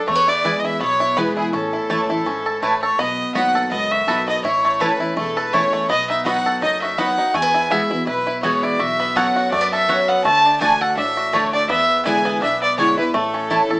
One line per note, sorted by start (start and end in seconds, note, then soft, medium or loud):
0.08 0.54 E2 medium
0.08 0.78 E2 medium
0.08 0.15 A3 medium
0.08 0.30 C#5 loud
0.08 0.31 C#5 medium
0.15 0.44 B3 medium
0.28 0.45 E4 medium
0.28 0.61 D5 loud
0.28 0.62 D5 medium
0.44 0.79 E3 medium
0.44 0.80 G#3 medium
0.44 0.54 B3 medium
0.44 0.80 B3 loud
0.44 0.63 E4 medium
0.44 0.55 E4 loud
0.44 0.80 E4 medium
0.44 0.55 B4 loud
0.44 0.55 G#5 loud
0.60 0.67 D#5 medium
0.60 0.68 D#5 medium
0.64 0.99 E4 medium
0.64 0.81 E5 loud
0.64 0.81 E5 medium
0.80 1.27 B1 medium
0.80 1.50 B2 medium
0.80 1.15 B3 medium
0.80 1.20 C#5 medium
0.80 1.20 C#5 loud
1.00 1.35 E4 medium
1.17 1.52 E3 loud
1.17 1.52 G#3 loud
1.17 1.53 B3 medium
1.17 1.27 B3 medium
1.17 1.53 B3 medium
1.17 1.27 E4 medium
1.17 1.53 E4 loud
1.17 1.27 B4 loud
1.17 1.36 B4 loud
1.17 1.38 B4 medium
1.17 1.27 G#5 loud
1.37 1.53 E4 medium
1.37 1.52 G#4 medium
1.37 1.53 G#4 medium
1.53 1.76 A1 loud
1.53 2.23 A2 medium
1.53 2.06 C#4 medium
1.53 2.59 A4 medium
1.73 2.09 E4 medium
1.90 2.21 F#1 medium
1.90 2.09 E3 medium
1.90 2.00 A3 medium
1.90 2.42 A3 medium
1.90 2.09 A3 loud
1.90 2.10 C#4 medium
1.90 2.00 E4 loud
1.90 2.08 E4 medium
1.90 2.00 C#5 medium
1.90 2.00 A5 loud
2.09 2.27 C#4 soft
2.09 2.25 E4 medium
2.09 2.59 E4 medium
2.26 2.57 G#1 medium
2.26 2.61 G#2 medium
2.26 2.79 C#4 medium
2.46 2.82 A4 medium
2.62 2.93 A1 medium
2.62 2.97 A2 medium
2.62 2.72 A3 medium
2.62 2.99 A3 medium
2.62 2.73 E4 medium
2.62 2.81 B4 medium
2.62 2.73 C#5 medium
2.62 2.73 A5 medium
2.82 2.99 A4 medium
2.82 3.00 C#5 medium
2.99 3.22 B1 medium
2.99 3.68 B2 medium
2.99 3.51 B3 medium
2.99 3.35 D#5 loud
2.99 3.34 D#5 medium
3.35 3.66 D#2 medium
3.35 3.70 F#3 medium
3.35 3.45 B3 medium
3.35 3.70 B3 medium
3.35 3.71 D#4 medium
3.35 3.88 F#4 medium
3.35 3.45 F#4 loud
3.35 3.71 F#4 loud
3.35 3.45 D#5 loud
3.35 3.69 F#5 medium
3.35 3.46 B5 loud
3.55 4.05 A4 medium
3.71 4.02 C#2 medium
3.71 4.41 F#2 medium
3.71 4.24 B3 medium
3.71 3.93 D#5 medium
3.91 4.41 F#4 medium
3.91 4.27 E5 medium
3.91 4.28 E5 medium
4.07 4.38 B1 medium
4.07 4.42 F#3 medium
4.07 4.18 B3 medium
4.07 4.43 B3 medium
4.07 4.43 D#4 loud
4.07 4.18 F#4 medium
4.07 4.43 F#4 loud
4.07 4.44 A4 medium
4.07 4.18 D#5 medium
4.07 4.18 B5 medium
4.28 4.44 B3 medium
4.28 4.43 D#5 medium
4.28 4.44 D#5 medium
4.44 4.90 A1 medium
4.44 5.14 A2 medium
4.44 4.97 E4 medium
4.44 4.82 C#5 medium
4.65 5.14 A3 medium
4.80 5.00 E3 medium
4.80 4.90 A3 loud
4.80 5.00 A3 loud
4.80 5.00 C#4 loud
4.80 4.90 E4 loud
4.80 4.98 E4 loud
4.80 5.33 A4 medium
4.80 5.16 B4 medium
4.80 5.17 B4 medium
4.80 4.91 C#5 loud
4.80 4.91 A5 loud
4.99 5.17 C#4 medium
4.99 5.16 E4 medium
4.99 5.50 E4 medium
5.17 5.63 E1 medium
5.17 5.86 E2 medium
5.17 5.69 A3 medium
5.17 5.38 A4 medium
5.37 5.86 A4 medium
5.37 5.55 B4 medium
5.37 5.56 B4 medium
5.53 5.88 E3 medium
5.53 5.63 A3 medium
5.53 5.88 A3 loud
5.53 5.89 C#4 loud
5.53 5.63 E4 medium
5.53 5.90 E4 medium
5.53 5.89 E4 loud
5.53 5.63 C#5 loud
5.53 5.89 C#5 medium
5.53 5.63 A5 loud
5.73 5.89 A3 medium
5.89 6.35 B1 medium
5.89 6.59 B2 medium
5.89 6.49 B3 medium
5.89 6.08 D#5 loud
5.89 6.08 D#5 medium
6.10 6.59 D#4 medium
6.10 6.25 E5 medium
6.25 6.60 F#3 loud
6.25 6.36 B3 loud
6.25 6.60 B3 loud
6.25 6.61 D#4 loud
6.25 6.36 F#4 loud
6.25 6.82 F#4 medium
6.25 6.61 F#4 loud
6.25 6.36 D#5 loud
6.25 6.60 F#5 medium
6.25 6.36 B5 medium
6.46 6.95 A4 medium
6.62 7.08 F#1 medium
6.62 7.32 F#2 medium
6.62 7.14 D#4 medium
6.62 6.81 D#5 medium
6.82 7.57 F#4 medium
6.82 7.00 E5 medium
6.82 7.01 E5 medium
6.98 7.17 F#3 medium
6.98 7.08 B3 medium
6.98 7.34 B3 medium
6.98 7.18 B3 loud
6.98 7.18 D#4 loud
6.98 7.08 F#4 loud
6.98 7.16 F#4 loud
6.98 7.09 D#5 medium
6.98 7.37 F#5 loud
6.98 7.36 F#5 medium
6.98 7.09 B5 medium
7.17 7.35 D#4 medium
7.17 7.34 F#4 medium
7.34 7.80 E2 loud
7.34 8.04 E2 medium
7.34 7.42 A3 medium
7.34 7.73 G#5 medium
7.34 7.73 G#5 loud
7.42 7.71 B3 medium
7.54 7.69 E4 medium
7.70 7.90 E3 medium
7.70 7.90 G#3 medium
7.70 7.81 B3 loud
7.70 7.91 B3 medium
7.70 7.90 E4 medium
7.70 7.81 F#4 loud
7.70 7.89 F#4 loud
7.70 8.07 E5 loud
7.70 7.81 E5 medium
7.70 8.07 E5 medium
7.70 7.81 G#5 loud
7.90 8.08 B3 medium
7.90 8.06 E4 medium
7.90 8.07 F#4 medium
8.07 8.53 B1 medium
8.07 8.76 B2 medium
8.07 8.26 E4 medium
8.07 8.41 B4 medium
8.27 8.62 E4 medium
8.43 8.78 E3 medium
8.43 8.79 G#3 loud
8.43 8.80 B3 medium
8.43 8.53 B3 medium
8.43 8.79 B3 medium
8.43 8.53 F#4 medium
8.43 8.79 F#4 medium
8.43 8.65 C#5 medium
8.43 8.66 C#5 medium
8.43 8.54 E5 medium
8.43 8.54 G#5 medium
8.63 8.80 E4 medium
8.63 8.82 D5 loud
8.63 8.82 D5 medium
8.79 9.25 B1 medium
8.79 9.49 B2 medium
8.79 9.36 F#4 medium
8.79 9.18 E5 loud
8.79 9.19 E5 medium
9.00 9.49 B3 medium
9.16 9.50 F#3 medium
9.16 9.26 B3 loud
9.16 9.51 B3 medium
9.16 9.51 C#4 medium
9.16 9.26 F#4 loud
9.16 9.52 F#4 loud
9.16 9.68 A4 medium
9.16 9.26 C#5 loud
9.16 9.26 F#5 loud
9.16 9.51 F#5 loud
9.16 9.53 F#5 medium
9.36 9.85 F#4 medium
9.52 9.98 F#2 medium
9.52 10.22 F#2 medium
9.52 9.61 A3 medium
9.52 9.70 D5 loud
9.52 9.72 D5 medium
9.61 9.89 B3 medium
9.72 10.22 A4 medium
9.72 10.10 E5 loud
9.72 10.11 E5 medium
9.88 10.23 F#3 medium
9.88 9.98 B3 medium
9.88 10.23 B3 loud
9.88 10.24 C#4 loud
9.88 9.99 F#4 medium
9.88 10.25 F#4 medium
9.88 10.24 F#4 loud
9.88 9.99 C#5 loud
9.88 9.99 F#5 loud
10.08 10.25 B3 medium
10.08 10.24 F#5 loud
10.08 10.25 F#5 medium
10.24 10.70 D2 loud
10.24 10.59 D3 medium
10.24 10.77 A3 medium
10.24 10.58 A5 loud
10.24 10.59 A5 medium
10.45 10.97 D4 medium
10.60 10.95 D3 medium
10.60 10.71 A3 loud
10.60 10.96 A3 loud
10.60 10.96 D4 loud
10.60 10.71 F#4 medium
10.60 11.13 F#4 medium
10.60 10.96 F#4 loud
10.60 10.71 D5 loud
10.60 10.83 G#5 loud
10.60 10.84 G#5 medium
10.60 10.71 A5 loud
10.81 11.30 A4 medium
10.81 10.97 F#5 loud
10.81 10.98 F#5 medium
10.97 11.43 A1 medium
10.97 11.66 A2 medium
10.97 11.49 D4 medium
10.97 11.36 E5 loud
11.17 11.66 F#4 medium
11.33 11.68 D3 medium
11.33 11.43 A3 medium
11.33 11.69 A3 medium
11.33 11.68 A3 medium
11.33 11.68 D4 medium
11.33 11.43 F#4 medium
11.33 11.69 F#4 medium
11.33 11.54 C#5 medium
11.33 11.52 C#5 medium
11.33 11.43 D5 medium
11.33 11.44 A5 medium
11.53 11.70 D4 medium
11.53 11.68 D5 loud
11.53 11.69 D5 medium
11.69 12.15 E2 loud
11.69 12.39 E2 medium
11.69 12.22 B3 medium
11.69 12.03 E5 loud
11.69 12.04 E5 medium
12.05 12.40 D3 medium
12.05 12.41 G#3 loud
12.05 12.15 B3 medium
12.05 12.41 B3 loud
12.05 12.58 E4 medium
12.05 12.16 E4 loud
12.05 12.41 E4 loud
12.05 12.16 D5 loud
12.05 12.40 G#5 loud
12.05 12.16 G#5 loud
12.05 12.40 G#5 medium
12.25 12.60 B3 medium
12.41 12.87 B1 medium
12.41 13.11 B2 medium
12.41 12.77 D4 medium
12.41 12.61 E5 loud
12.41 12.61 E5 medium
12.62 13.11 B3 medium
12.62 12.77 D5 medium
12.62 12.78 D5 medium
12.78 12.97 D3 medium
12.78 12.97 G#3 loud
12.78 12.88 B3 medium
12.78 12.98 B3 medium
12.78 13.14 D4 medium
12.78 12.88 E4 medium
12.78 12.96 E4 loud
12.78 12.97 C#5 medium
12.78 12.98 C#5 medium
12.78 12.88 D5 medium
12.78 12.88 G#5 loud
12.97 13.14 B3 soft
12.97 13.13 E4 medium
12.97 13.14 E4 medium
12.97 13.14 B4 medium
13.14 13.60 A1 loud
13.14 13.80 A2 medium
13.14 13.66 A3 medium
13.14 13.80 A4 medium
13.34 13.80 C#4 medium
13.50 13.69 E3 medium
13.50 13.60 A3 medium
13.50 13.70 A3 loud
13.50 13.70 C#4 medium
13.50 13.60 E4 loud
13.50 13.80 E4 medium
13.50 13.68 E4 medium
13.50 13.61 C#5 medium
13.50 13.61 A5 loud
13.70 13.80 C#4 medium
13.70 13.80 E4 medium
13.70 13.80 A4 medium